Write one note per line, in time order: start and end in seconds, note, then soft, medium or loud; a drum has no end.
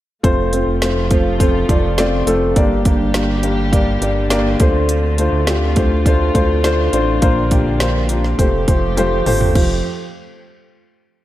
0.23 0.64 F1 loud
0.23 2.55 C3 medium
0.23 2.55 F3 medium
0.23 0.49 A3 loud
0.23 2.55 A3 medium
0.23 0.49 C4 medium
0.23 0.49 F4 medium
0.23 2.55 F4 medium
0.23 0.49 C5 loud
0.23 kick loud
0.23 closed hi-hat medium
0.53 0.78 A3 medium
0.53 0.78 C4 medium
0.53 0.78 F4 medium
0.53 0.78 C5 medium
0.53 closed hi-hat medium
0.67 0.81 F1 medium
0.81 1.65 F1 loud
0.81 1.07 A3 medium
0.81 1.07 C4 medium
0.81 1.07 F4 medium
0.81 1.08 C5 medium
0.81 snare loud
0.81 closed hi-hat medium
1.11 1.36 A3 medium
1.11 1.36 C4 medium
1.11 1.36 F4 medium
1.11 1.36 C5 medium
1.11 kick medium
1.11 closed hi-hat medium
1.40 1.65 A3 medium
1.40 1.65 C4 medium
1.40 1.65 F4 medium
1.40 1.65 C5 medium
1.40 kick medium
1.40 closed hi-hat medium
1.69 2.23 F1 loud
1.69 1.94 A3 medium
1.69 1.94 C4 medium
1.69 1.94 F4 medium
1.69 1.94 D5 medium
1.69 kick medium
1.69 closed hi-hat medium
1.98 2.23 A3 loud
1.98 2.24 C4 loud
1.98 2.24 F4 loud
1.98 2.24 D5 loud
1.98 snare loud
1.98 closed hi-hat medium
2.27 2.54 F1 medium
2.27 2.52 A3 loud
2.27 2.52 C4 medium
2.27 2.52 F4 medium
2.27 2.53 A4 loud
2.27 closed hi-hat medium
2.56 2.97 G1 loud
2.56 3.40 G2 medium
2.56 7.19 D3 medium
2.56 4.59 G3 medium
2.56 2.81 A#3 loud
2.56 4.59 A#3 medium
2.56 2.81 D4 medium
2.56 2.82 G4 medium
2.56 4.58 G4 medium
2.56 2.82 D5 loud
2.56 kick loud
2.56 closed hi-hat medium
2.85 3.11 A#3 medium
2.85 3.11 D4 medium
2.85 3.11 G4 medium
2.85 3.11 D5 medium
2.85 kick medium
2.85 closed hi-hat medium
3.00 3.13 G1 medium
3.14 3.98 G1 loud
3.14 3.40 A#3 medium
3.14 3.40 D4 medium
3.14 3.40 G4 medium
3.14 3.40 D5 medium
3.14 snare loud
3.14 closed hi-hat medium
3.43 3.69 A#3 medium
3.43 3.69 D4 medium
3.43 3.69 G4 medium
3.43 3.69 D5 medium
3.43 closed hi-hat medium
3.72 3.98 A#3 medium
3.72 3.98 D4 medium
3.72 3.98 G4 medium
3.72 3.98 D5 medium
3.72 kick medium
3.72 closed hi-hat medium
4.01 4.56 G1 medium
4.01 4.27 A#3 medium
4.01 4.27 D4 medium
4.01 4.27 G4 medium
4.01 4.27 D5 medium
4.01 closed hi-hat medium
4.30 4.56 A#3 loud
4.30 4.56 D4 medium
4.30 4.56 G4 medium
4.30 4.56 D5 loud
4.30 snare loud
4.30 closed hi-hat medium
4.60 5.29 D2 medium
4.60 5.44 D3 medium
4.60 5.11 A3 medium
4.60 7.20 A3 medium
4.60 9.52 C4 medium
4.60 5.11 D4 medium
4.60 5.11 F4 medium
4.60 8.36 F4 medium
4.60 5.11 C5 medium
4.60 kick medium
4.60 closed hi-hat medium
4.89 closed hi-hat medium
5.18 5.44 A3 medium
5.18 5.44 D4 medium
5.18 5.44 F4 medium
5.18 5.44 C5 medium
5.18 closed hi-hat medium
5.32 5.46 D2 medium
5.47 6.31 D2 loud
5.47 5.73 A3 medium
5.47 5.73 D4 medium
5.47 5.73 F4 medium
5.47 5.73 G4 medium
5.47 snare loud
5.47 closed hi-hat medium
5.76 6.02 A3 medium
5.76 6.02 D4 medium
5.76 6.02 F4 medium
5.76 6.02 C5 medium
5.76 kick medium
5.76 closed hi-hat medium
6.06 6.31 A3 medium
6.06 6.31 D4 medium
6.06 6.31 F4 medium
6.06 6.32 C5 medium
6.06 kick medium
6.06 closed hi-hat medium
6.34 6.89 D2 loud
6.34 6.60 A3 medium
6.34 6.60 D4 medium
6.34 6.60 F4 medium
6.34 6.60 C5 medium
6.34 kick medium
6.34 closed hi-hat medium
6.64 6.89 A3 loud
6.64 6.89 D4 medium
6.64 6.89 F4 loud
6.64 6.90 C5 loud
6.64 snare loud
6.64 closed hi-hat medium
6.93 7.20 A1 medium
6.93 7.18 A3 loud
6.93 7.18 D4 medium
6.93 7.18 F4 medium
6.93 7.19 C5 loud
6.93 closed hi-hat medium
7.22 7.63 A#1 medium
7.22 8.06 A#2 medium
7.22 8.38 D3 medium
7.22 7.47 A#3 loud
7.22 8.38 A#3 medium
7.22 7.48 D4 medium
7.22 7.48 F4 medium
7.22 7.48 C5 loud
7.22 kick loud
7.22 closed hi-hat medium
7.51 7.76 A#3 medium
7.51 7.77 D4 medium
7.51 7.77 F4 medium
7.51 7.77 G4 medium
7.51 kick medium
7.51 closed hi-hat medium
7.66 7.80 A#1 medium
7.80 8.35 A#1 loud
7.80 8.05 A#3 medium
7.80 8.06 D4 medium
7.80 8.06 F4 medium
7.80 8.06 C5 medium
7.80 snare loud
7.80 closed hi-hat medium
8.09 8.34 A#3 medium
8.09 8.35 D4 medium
8.09 8.35 F4 medium
8.09 8.35 G4 medium
8.09 closed hi-hat medium
8.24 snare soft
8.38 8.66 F1 loud
8.38 9.55 F3 medium
8.38 8.64 A3 medium
8.38 9.55 A3 medium
8.38 8.64 F4 medium
8.38 8.64 G4 medium
8.38 9.55 G4 medium
8.38 8.64 C5 medium
8.38 kick medium
8.38 closed hi-hat medium
8.68 9.22 F1 medium
8.68 8.93 A3 medium
8.68 8.93 F4 medium
8.68 8.93 G4 medium
8.68 8.93 C5 medium
8.68 kick medium
8.68 closed hi-hat medium
8.97 9.22 A3 medium
8.97 9.22 F4 medium
8.97 9.23 G4 medium
8.97 9.23 C5 loud
8.97 closed hi-hat medium
8.97 high tom medium
9.26 9.53 G1 medium
9.26 9.51 A3 medium
9.26 9.52 F4 medium
9.26 9.52 G4 medium
9.26 9.52 C5 loud
9.26 mid tom medium
9.26 open hi-hat medium
9.41 floor tom medium
9.55 9.82 F1 medium
9.55 9.82 F2 medium
9.55 9.83 F3 medium
9.55 9.83 A3 medium
9.55 9.83 C4 medium
9.55 9.82 F4 medium
9.55 9.82 G4 medium
9.55 9.83 G4 medium
9.55 9.82 C5 medium
9.55 kick loud
9.55 crash medium